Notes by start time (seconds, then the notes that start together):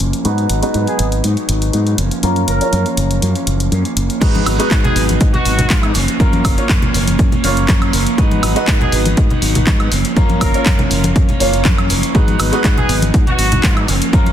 Already playing: F3 A#3 C#4 F4 C#5
0.00 F#1, closed hi-hat
0.13 closed hi-hat
0.24 G#2 F#3 G#3 B3 D#4 F#4 B4, closed hi-hat
0.38 closed hi-hat
0.50 G#1, closed hi-hat
0.62 G#3 B3 D#4 F#4 B4, closed hi-hat
0.73 G#2 F#3 B3 D#4, closed hi-hat
0.87 G#4, closed hi-hat
0.99 G#1, closed hi-hat
1.12 closed hi-hat
1.23 G#2 F#3 B3 D#4, closed hi-hat
1.37 closed hi-hat
1.49 G#1, closed hi-hat
1.62 closed hi-hat
1.72 G#2 F#3 B3 D#4, closed hi-hat
1.87 closed hi-hat
1.97 F#1 F3 A#3 C#4, closed hi-hat
2.11 closed hi-hat
2.23 F#2 A#3 C#4 F4 A#4, closed hi-hat
2.36 closed hi-hat
2.48 F#1 A#4, closed hi-hat
2.61 A#3 C#4 F4 C#5, muted fingered electric bass stroke, closed hi-hat
2.72 F#2 F3 A#3 C#4, closed hi-hat
2.86 closed hi-hat
2.97 F#1, closed hi-hat
3.11 closed hi-hat
3.21 F#2 F3 A#3 C#4, closed hi-hat
3.35 closed hi-hat
3.47 F#1, closed hi-hat
3.60 closed hi-hat
3.71 F#2 F3 A#3 C#4, closed hi-hat
3.85 closed hi-hat
3.97 F#1, closed hi-hat
4.10 closed hi-hat
4.21 G#2 F#3 G#3 B3 D#4 F#4 B4, kick, closed hi-hat, crash, maracas
4.35 closed hi-hat, high conga, maracas
4.45 G#1 F#3 B3 D#4, open hi-hat, high woodblock, maracas
4.58 G#3 B3 D#4 F#4 B4, closed hi-hat, maracas
4.70 G#2 F#3 B3, kick, clap, closed hi-hat, maracas
4.84 G#4, closed hi-hat, low conga, maracas
4.95 G#1 F#3 B3 D#4, open hi-hat, maracas
5.09 closed hi-hat, high conga, maracas
5.20 G#2, kick, closed hi-hat, maracas
5.33 B3 D#4 F#4, closed hi-hat, low conga, maracas
5.44 G#1 F#3 B3 D#4, open hi-hat, maracas
5.58 B3 D#4, closed hi-hat, low conga, maracas
5.69 G#2 F#3 B3 D#4, kick, clap, closed hi-hat, high conga, maracas
5.82 B3 D#4, closed hi-hat, high woodblock, maracas
5.94 F#1 F3 A#3 C#4, open hi-hat, maracas
6.08 closed hi-hat, maracas
6.19 F#2 F3 A#3 C#4 F4 A#4, kick, closed hi-hat, maracas
6.32 closed hi-hat, high conga, maracas
6.44 F#1 F3 A#3 C#4, kick, open hi-hat, high woodblock, maracas
6.57 A#3 C#4 F4 C#5, muted fingered electric bass stroke, closed hi-hat, maracas
6.69 F#2 F3, kick, clap, closed hi-hat, maracas
6.82 closed hi-hat, low conga, maracas
6.93 F#1 F3 A#3 C#4, open hi-hat, maracas
7.07 closed hi-hat, high conga, maracas
7.19 F#2, kick, closed hi-hat, maracas
7.31 A#3 C#4, closed hi-hat, low conga, maracas
7.43 F#1 F3 A#3 C#4 F4 C#5, open hi-hat, maracas
7.57 closed hi-hat, maracas
7.68 F#2 F3 C#4, kick, clap, closed hi-hat, high conga, maracas
7.82 closed hi-hat, high woodblock, maracas
7.92 F#1 F3 A#3 C#4, open hi-hat, maracas
8.07 closed hi-hat, maracas
8.17 G#2 F#3 G#3 B3 D#4 F#4 B4, kick, closed hi-hat, maracas
8.31 closed hi-hat, high conga, maracas
8.42 G#1 F#3 B3 D#4, open hi-hat, high woodblock, maracas
8.55 G#3 B3 D#4 F#4 B4, closed hi-hat, maracas
8.67 G#2 F#3 D#4, kick, clap, closed hi-hat, maracas
8.81 G#4, closed hi-hat, low conga, maracas
8.91 G#1 F#3 B3 D#4, open hi-hat, maracas
9.05 closed hi-hat, high conga, maracas
9.17 G#2, kick, closed hi-hat, maracas
9.29 B3 D#4, closed hi-hat, low conga, maracas
9.41 G#1 F#3 B3 D#4, open hi-hat, maracas
9.54 B3 D#4, closed hi-hat, low conga, maracas
9.66 G#2 F#3, kick, clap, closed hi-hat, high conga, maracas
9.79 B3 D#4, closed hi-hat, high woodblock, maracas
9.91 F#1 F3 A#3 C#4, open hi-hat, maracas
10.05 closed hi-hat, maracas
10.16 F#2 F3 A#3 C#4 F4 A#4, kick, closed hi-hat, maracas
10.29 closed hi-hat, high conga, maracas
10.40 F#1 F3 A#3 C#4 A#4, kick, open hi-hat, high woodblock, maracas
10.53 A#3 C#4 F4 C#5, muted fingered electric bass stroke, closed hi-hat, maracas
10.65 F#2 F3, kick, clap, closed hi-hat, maracas
10.79 closed hi-hat, low conga, maracas
10.90 F#1 F3 A#3 C#4, open hi-hat, maracas
11.04 closed hi-hat, high conga, maracas
11.16 F#2, kick, closed hi-hat, maracas
11.28 A#3 C#4, closed hi-hat, low conga, maracas
11.39 F#1 F3 A#3 C#4 F4 C#5, open hi-hat, maracas
11.53 A#3 C#4, closed hi-hat, maracas
11.64 F#2 F3 A#3, kick, clap, closed hi-hat, high conga, maracas
11.77 A#3 C#4, closed hi-hat, high woodblock, maracas
11.89 F#1 F3 A#3 C#4, open hi-hat, maracas
12.03 closed hi-hat, maracas
12.14 G#2 F#3 G#3 B3 D#4 F#4 B4, kick, closed hi-hat, maracas
12.28 closed hi-hat, high conga, maracas
12.39 G#1 F#3 B3 D#4, open hi-hat, high woodblock, maracas
12.52 G#3 B3 D#4 F#4 B4, closed hi-hat, maracas
12.64 G#2 D#4, kick, clap, closed hi-hat, maracas
12.78 G#4, closed hi-hat, low conga, maracas
12.88 G#1 F#3 B3 D#4, open hi-hat, maracas
13.02 closed hi-hat, high conga, maracas
13.14 G#2, kick, closed hi-hat, maracas
13.26 B3 D#4 F#4, closed hi-hat, low conga, maracas
13.38 G#1 F#3 B3 D#4, open hi-hat, maracas
13.51 B3 D#4, closed hi-hat, low conga, maracas
13.63 G#2 F#3 B3, kick, clap, closed hi-hat, high conga, maracas
13.77 closed hi-hat, high woodblock, maracas
13.87 F#1 F3 A#3 C#4, open hi-hat, maracas
14.01 closed hi-hat, maracas
14.12 F#2 F3 A#3 C#4 F4 A#4, kick, closed hi-hat, maracas
14.26 closed hi-hat, high conga, maracas